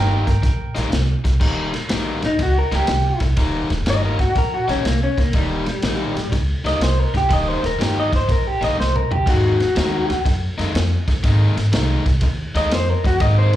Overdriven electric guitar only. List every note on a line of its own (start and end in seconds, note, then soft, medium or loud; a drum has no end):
0.00 0.27 D#3 loud
0.00 0.26 G3 medium
0.00 0.26 A#3 loud
0.00 0.26 D#4 loud
0.27 muted overdriven electric guitar stroke soft
0.42 muted overdriven electric guitar stroke medium
0.75 0.90 D#3 medium
0.75 0.90 G3 medium
0.75 0.90 A#3 medium
0.75 0.90 D#4 medium
0.91 muted overdriven electric guitar stroke medium
1.24 muted overdriven electric guitar stroke soft
1.40 1.72 D#3 medium
1.40 1.72 G3 medium
1.40 1.72 A#3 medium
1.40 1.71 D#4 medium
1.72 muted overdriven electric guitar stroke medium
1.89 2.22 D#3 medium
1.89 2.22 G3 medium
1.89 2.21 A#3 medium
1.89 2.21 D#4 medium
2.22 muted overdriven electric guitar stroke soft
2.39 muted overdriven electric guitar stroke soft
2.72 2.86 D#3 medium
2.72 2.87 G3 medium
2.72 2.87 A#3 medium
2.72 2.87 D#4 medium
2.87 muted overdriven electric guitar stroke soft
3.21 muted overdriven electric guitar stroke soft
3.37 3.70 D#3 medium
3.37 3.70 G3 medium
3.37 3.70 A#3 medium
3.37 3.69 D#4 medium
3.71 muted overdriven electric guitar stroke soft
3.86 4.19 D#3 medium
3.86 4.18 G3 medium
3.86 4.18 A#3 loud
3.86 4.18 D#4 loud
4.19 muted overdriven electric guitar stroke soft
4.36 muted overdriven electric guitar stroke soft
4.68 4.84 D#3 medium
4.68 4.84 G3 medium
4.68 4.84 A#3 medium
4.68 4.84 D#4 medium
4.85 muted overdriven electric guitar stroke soft
5.18 muted overdriven electric guitar stroke medium
5.34 5.66 D#3 medium
5.34 5.66 G3 medium
5.34 5.66 A#3 medium
5.34 5.65 D#4 loud
5.66 muted overdriven electric guitar stroke medium
5.84 6.16 D#3 medium
5.84 6.16 G3 loud
5.84 6.16 A#3 medium
5.84 6.16 D#4 loud
6.17 muted overdriven electric guitar stroke soft
6.32 muted overdriven electric guitar stroke soft
6.65 6.80 D#3 medium
6.65 6.81 G3 medium
6.65 6.81 A#3 medium
6.65 6.81 D#4 medium
6.81 muted overdriven electric guitar stroke soft
7.14 muted overdriven electric guitar stroke medium
7.29 7.62 D#3 medium
7.29 7.62 G3 loud
7.29 7.61 A#3 medium
7.29 7.61 D#4 medium
7.62 muted overdriven electric guitar stroke medium
7.79 8.12 D#3 medium
7.79 8.12 G3 medium
7.79 8.11 A#3 medium
7.79 8.11 D#4 loud
8.12 muted overdriven electric guitar stroke soft
8.28 muted overdriven electric guitar stroke soft
8.61 8.77 D#3 medium
8.61 8.77 G3 medium
8.61 8.78 A#3 medium
8.61 8.78 D#4 medium
8.78 muted overdriven electric guitar stroke soft
9.11 muted overdriven electric guitar stroke medium
9.26 9.60 D#3 medium
9.26 9.59 G#3 medium
9.26 9.59 A#3 medium
9.26 9.59 D#4 medium
9.60 muted overdriven electric guitar stroke soft
9.75 10.09 D#3 medium
9.75 10.09 G#3 medium
9.75 10.09 A#3 medium
9.75 10.08 D#4 loud
10.10 muted overdriven electric guitar stroke soft
10.25 muted overdriven electric guitar stroke soft
10.58 10.73 D#3 medium
10.58 10.74 G#3 medium
10.58 10.74 A#3 medium
10.58 10.74 D#4 medium
10.75 muted overdriven electric guitar stroke soft
11.08 muted overdriven electric guitar stroke medium
11.23 11.56 D#3 medium
11.23 11.57 G#3 medium
11.23 11.56 A#3 medium
11.23 11.56 D#4 loud
11.57 muted overdriven electric guitar stroke medium
11.72 12.05 D#3 medium
11.72 12.05 G#3 medium
11.72 12.05 A#3 medium
11.72 12.04 D#4 loud
12.06 muted overdriven electric guitar stroke soft
12.22 muted overdriven electric guitar stroke soft
12.55 12.70 D#3 medium
12.55 12.71 G#3 medium
12.55 12.71 A#3 medium
12.55 12.71 D#4 medium
12.71 muted overdriven electric guitar stroke soft
13.05 muted overdriven electric guitar stroke medium
13.20 13.52 D#3 loud
13.20 13.52 G#3 loud
13.20 13.52 A#3 loud
13.20 13.52 D#4 loud
13.53 muted overdriven electric guitar stroke medium